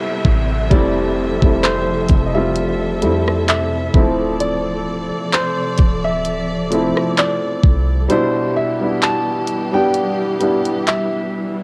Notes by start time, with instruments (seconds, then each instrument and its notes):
Already playing: string section C3 G3 A4 E5, felt piano G3 B3 C4 E4, grand piano E5, downlifter
0.25 808-style bass A1, kick
0.70 808-style bass F1, string section F3, felt piano G3 A3 C4 E4, grand piano D5, kick, closed hi-hat
1.42 808-style bass F1, felt piano G3 A3 C4 E4, kick
1.63 grand piano C5, clap, closed hi-hat
2.09 808-style bass F1, kick, closed hi-hat
2.26 grand piano D#5
2.34 felt piano G3 A3 C4 F4, grand piano E5
2.56 closed hi-hat
3.02 808-style bass F2, felt piano G3 A3 C4 E4, closed hi-hat
3.28 cross-stick
3.48 grand piano E5, clap, closed hi-hat
3.93 808-style bass D1, felt piano E3 A3 C4 E4, string section F3 D5, kick
4.00 felt piano F3
4.40 grand piano D5, closed hi-hat
4.87 808-style bass C1
5.33 grand piano C5, clap, closed hi-hat
5.78 808-style bass D1, kick, closed hi-hat
6.04 grand piano E5
6.25 closed hi-hat
6.70 felt piano F3 A3 C4 E4, closed hi-hat
6.97 cross-stick
7.18 grand piano D5, clap, closed hi-hat
7.63 808-style bass C2, kick
8.09 felt piano B2 G3 D4 E4, string section E3 G3 G4, grand piano C5, closed hi-hat
8.56 grand piano E5
8.80 felt piano G3 B3 D4 E4
9.02 grand piano A5, clap, closed hi-hat
9.47 closed hi-hat
9.72 felt piano G3 B3 D4 G4, grand piano G5
9.94 closed hi-hat
10.40 felt piano G3 B3 D4 E4, closed hi-hat
10.65 closed hi-hat
10.87 grand piano E5, clap, closed hi-hat